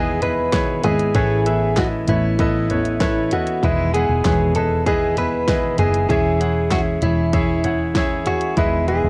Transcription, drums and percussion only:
0.22 closed hi-hat medium
0.22 floor tom medium
0.52 kick loud
0.52 snare loud
0.52 clap medium
0.52 closed hi-hat medium
0.84 closed hi-hat medium
0.84 floor tom medium
0.99 closed hi-hat soft
1.15 kick medium
1.15 closed hi-hat medium
1.46 closed hi-hat medium
1.76 kick medium
1.76 snare loud
1.76 clap medium
1.76 closed hi-hat medium
2.07 closed hi-hat medium
2.07 floor tom medium
2.39 kick loud
2.39 closed hi-hat medium
2.70 closed hi-hat medium
2.70 floor tom medium
2.85 closed hi-hat soft
3.00 kick loud
3.00 snare loud
3.00 clap medium
3.00 closed hi-hat medium
3.31 closed hi-hat medium
3.31 floor tom medium
3.47 closed hi-hat medium
3.63 kick medium
3.63 closed hi-hat medium
3.94 closed hi-hat medium
4.25 kick loud
4.25 snare medium
4.25 clap medium
4.25 closed hi-hat medium
4.55 closed hi-hat medium
4.55 floor tom medium
4.86 kick medium
4.86 closed hi-hat medium
5.17 closed hi-hat medium
5.17 floor tom medium
5.48 kick loud
5.48 snare loud
5.48 clap medium
5.48 closed hi-hat medium
5.78 closed hi-hat medium
5.78 floor tom medium
5.94 closed hi-hat medium
6.10 kick loud
6.10 closed hi-hat medium
6.41 closed hi-hat medium
6.71 kick loud
6.71 snare loud
6.71 clap medium
6.71 closed hi-hat medium
7.02 closed hi-hat medium
7.02 floor tom medium
7.33 kick loud
7.33 closed hi-hat medium
7.64 closed hi-hat medium
7.64 floor tom medium
7.95 kick loud
7.95 snare loud
7.95 clap medium
7.95 closed hi-hat medium
8.26 closed hi-hat medium
8.26 floor tom medium
8.41 closed hi-hat soft
8.57 kick medium
8.57 closed hi-hat medium
8.88 closed hi-hat medium

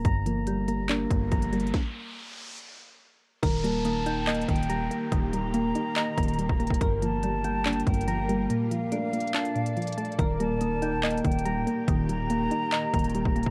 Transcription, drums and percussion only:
0.05 kick loud
0.05 closed hi-hat medium
0.26 closed hi-hat medium
0.47 closed hi-hat medium
0.68 closed hi-hat medium
0.89 clap loud
0.89 closed hi-hat medium
1.10 kick loud
1.10 closed hi-hat medium
1.32 kick medium
1.32 closed hi-hat medium
1.42 closed hi-hat medium
1.53 closed hi-hat medium
1.60 closed hi-hat medium
1.67 closed hi-hat medium
1.74 kick loud
1.74 snare medium
3.43 kick loud
3.43 closed hi-hat medium
3.64 closed hi-hat medium
3.85 closed hi-hat medium
4.06 closed hi-hat medium
4.27 clap loud
4.27 closed hi-hat medium
4.34 closed hi-hat medium
4.41 closed hi-hat medium
4.49 kick loud
4.49 closed hi-hat medium
4.56 closed hi-hat medium
4.63 closed hi-hat medium
4.70 closed hi-hat medium
4.91 closed hi-hat medium
5.12 kick loud
5.12 closed hi-hat medium
5.33 closed hi-hat medium
5.54 closed hi-hat medium
5.75 closed hi-hat medium
5.96 clap loud
5.96 closed hi-hat medium
6.18 kick loud
6.18 closed hi-hat medium
6.23 closed hi-hat medium
6.28 closed hi-hat medium
6.34 closed hi-hat soft
6.39 closed hi-hat medium
6.49 kick loud
6.60 closed hi-hat soft
6.67 kick medium
6.67 closed hi-hat medium
6.74 closed hi-hat medium
6.81 kick loud
6.81 closed hi-hat medium
7.02 closed hi-hat medium
7.23 closed hi-hat medium
7.44 closed hi-hat medium
7.66 clap loud
7.66 closed hi-hat medium
7.73 closed hi-hat medium
7.80 closed hi-hat medium
7.87 kick loud
7.87 closed hi-hat medium
7.94 closed hi-hat medium
8.01 closed hi-hat medium
8.08 closed hi-hat medium
8.29 closed hi-hat medium
8.50 closed hi-hat medium
8.71 closed hi-hat medium
8.92 closed hi-hat medium
9.13 closed hi-hat medium
9.13 open hi-hat medium
9.20 closed hi-hat medium
9.27 closed hi-hat medium
9.35 clap loud
9.35 closed hi-hat medium
9.45 closed hi-hat medium
9.56 closed hi-hat soft
9.66 closed hi-hat medium
9.77 closed hi-hat medium
9.82 closed hi-hat medium
9.87 closed hi-hat medium
9.92 closed hi-hat medium
9.98 closed hi-hat medium
10.05 closed hi-hat medium
10.12 closed hi-hat soft
10.19 kick loud
10.19 closed hi-hat medium
10.40 closed hi-hat medium
10.61 closed hi-hat medium
10.82 closed hi-hat medium
11.03 clap loud
11.03 closed hi-hat medium
11.10 closed hi-hat medium
11.17 closed hi-hat medium
11.24 kick loud
11.24 closed hi-hat medium
11.32 closed hi-hat medium
11.39 closed hi-hat medium
11.46 closed hi-hat medium
11.67 closed hi-hat medium
11.88 kick loud
11.88 closed hi-hat medium
12.09 closed hi-hat medium
12.30 closed hi-hat medium
12.51 closed hi-hat medium
12.72 clap loud
12.72 closed hi-hat medium
12.94 kick loud
12.94 closed hi-hat medium
12.99 closed hi-hat medium
13.04 closed hi-hat medium
13.10 closed hi-hat soft
13.15 closed hi-hat medium
13.25 kick loud
13.36 closed hi-hat soft
13.43 kick medium
13.43 closed hi-hat medium

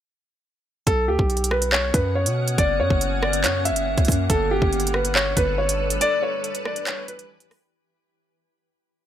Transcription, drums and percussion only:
0.87 kick loud
0.87 closed hi-hat medium
1.19 kick medium
1.30 closed hi-hat soft
1.37 closed hi-hat medium
1.44 closed hi-hat medium
1.51 cross-stick loud
1.62 closed hi-hat medium
1.73 clap loud
1.94 kick medium
1.94 closed hi-hat medium
2.26 closed hi-hat loud
2.48 closed hi-hat medium
2.58 kick loud
2.58 closed hi-hat medium
2.90 kick loud
3.01 closed hi-hat medium
3.23 cross-stick loud
3.33 closed hi-hat medium
3.44 clap loud
3.44 closed hi-hat medium
3.65 closed hi-hat medium
3.76 closed hi-hat medium
3.98 kick loud
3.98 closed hi-hat medium
4.05 kick loud
4.05 closed hi-hat medium
4.05 open hi-hat medium
4.12 closed hi-hat medium
4.30 kick loud
4.30 closed hi-hat medium
4.62 kick loud
4.73 closed hi-hat soft
4.80 closed hi-hat medium
4.87 closed hi-hat medium
4.94 cross-stick medium
5.05 closed hi-hat medium
5.15 clap loud
5.37 kick medium
5.37 closed hi-hat medium
5.69 closed hi-hat loud
5.90 closed hi-hat medium
6.01 closed hi-hat medium
6.44 closed hi-hat medium
6.55 closed hi-hat medium
6.65 cross-stick loud
6.76 closed hi-hat medium
6.87 clap loud
6.87 closed hi-hat medium
7.08 closed hi-hat medium
7.19 closed hi-hat medium
7.40 closed hi-hat medium
7.51 cross-stick medium
7.51 open hi-hat medium

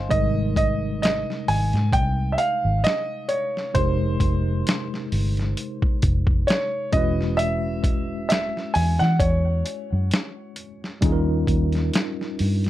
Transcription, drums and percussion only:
0.11 kick loud
0.11 closed hi-hat medium
0.56 kick medium
0.56 closed hi-hat medium
1.03 snare loud
1.03 closed hi-hat medium
1.30 snare soft
1.48 open hi-hat soft
1.73 snare soft
1.73 closed hi-hat soft
1.93 kick medium
1.93 closed hi-hat medium
2.38 closed hi-hat medium
2.84 snare loud
2.84 closed hi-hat medium
3.29 closed hi-hat medium
3.57 snare soft
3.75 kick loud
3.75 closed hi-hat medium
4.20 kick medium
4.20 closed hi-hat medium
4.67 snare loud
4.67 closed hi-hat medium
4.94 snare soft
5.12 open hi-hat soft
5.37 snare soft
5.37 closed hi-hat soft
5.57 closed hi-hat medium
5.82 kick medium
6.02 kick medium
6.02 closed hi-hat medium
6.27 kick medium
6.48 snare loud
6.48 closed hi-hat medium
6.93 kick loud
6.93 closed hi-hat medium
7.21 snare soft
7.39 closed hi-hat medium
7.84 kick medium
7.84 closed hi-hat medium
8.30 snare loud
8.30 closed hi-hat medium
8.57 snare soft
8.75 open hi-hat medium
9.00 snare soft
9.00 closed hi-hat soft
9.20 kick medium
9.20 closed hi-hat medium
9.66 closed hi-hat medium
10.11 snare loud
10.11 closed hi-hat medium
10.56 closed hi-hat medium
10.84 snare soft
11.02 kick loud
11.02 closed hi-hat medium
11.47 kick medium
11.47 closed hi-hat medium
11.72 snare soft
11.72 closed hi-hat soft
11.93 snare loud
11.93 closed hi-hat medium
12.21 snare soft
12.39 open hi-hat soft
12.64 snare soft
12.64 closed hi-hat soft

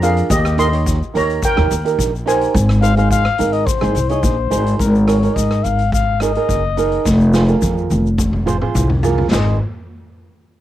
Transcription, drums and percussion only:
0.02 closed hi-hat loud
0.02 shaker medium
0.17 closed hi-hat medium
0.17 shaker soft
0.30 kick loud
0.30 closed hi-hat medium
0.30 shaker loud
0.45 cross-stick loud
0.45 shaker soft
0.58 closed hi-hat loud
0.58 shaker medium
0.73 closed hi-hat medium
0.86 kick medium
0.86 closed hi-hat medium
0.86 shaker loud
1.03 shaker soft
1.15 closed hi-hat loud
1.15 shaker medium
1.29 closed hi-hat medium
1.29 shaker soft
1.42 kick loud
1.42 closed hi-hat medium
1.42 shaker loud
1.57 cross-stick medium
1.71 closed hi-hat medium
1.71 shaker medium
1.85 closed hi-hat medium
1.85 shaker soft
1.99 kick medium
1.99 closed hi-hat medium
1.99 shaker loud
2.16 shaker soft
2.27 closed hi-hat medium
2.27 shaker medium
2.41 closed hi-hat medium
2.41 shaker soft
2.54 kick loud
2.54 closed hi-hat medium
2.54 shaker medium
2.69 cross-stick medium
2.69 shaker soft
2.82 closed hi-hat medium
2.82 shaker medium
2.97 closed hi-hat medium
2.97 shaker soft
3.11 kick medium
3.11 closed hi-hat medium
3.11 shaker loud
3.25 cross-stick medium
3.38 closed hi-hat medium
3.38 shaker medium
3.53 closed hi-hat medium
3.66 kick loud
3.66 closed hi-hat medium
3.66 shaker loud
3.81 cross-stick medium
3.81 shaker soft
3.95 closed hi-hat medium
3.95 shaker medium
4.09 closed hi-hat medium
4.09 shaker soft
4.23 kick medium
4.23 closed hi-hat medium
4.23 shaker loud
4.51 closed hi-hat medium
4.51 shaker medium
4.67 closed hi-hat medium
4.67 shaker soft
4.80 kick loud
4.80 closed hi-hat medium
4.80 shaker medium
4.95 shaker soft
5.08 cross-stick medium
5.08 closed hi-hat loud
5.08 shaker medium
5.23 closed hi-hat medium
5.23 shaker soft
5.36 kick medium
5.36 closed hi-hat medium
5.36 shaker medium
5.51 cross-stick medium
5.51 shaker soft
5.64 closed hi-hat medium
5.64 shaker medium
5.79 closed hi-hat medium
5.79 shaker soft
5.92 kick loud
5.92 closed hi-hat medium
5.92 shaker medium
6.20 cross-stick medium
6.20 closed hi-hat medium
6.20 shaker medium
6.35 closed hi-hat medium
6.49 kick medium
6.49 closed hi-hat medium
6.49 shaker medium
6.77 closed hi-hat medium
6.77 shaker medium
6.92 closed hi-hat medium
7.05 kick loud
7.05 snare medium
7.05 shaker medium
7.20 shaker soft
7.34 snare medium
7.34 shaker medium
7.48 shaker soft
7.62 kick medium
7.62 high tom medium
7.62 shaker medium
7.77 shaker soft
7.90 high tom medium
7.90 shaker medium
8.06 shaker soft
8.18 kick loud
8.18 mid tom medium
8.18 shaker medium
8.33 mid tom medium
8.47 mid tom medium
8.47 shaker medium
8.61 mid tom medium
8.75 kick medium
8.75 mid tom medium
8.75 shaker loud
8.90 floor tom medium
9.03 floor tom loud
9.03 shaker medium
9.18 floor tom medium
9.31 snare medium
9.31 crash medium
9.31 shaker medium

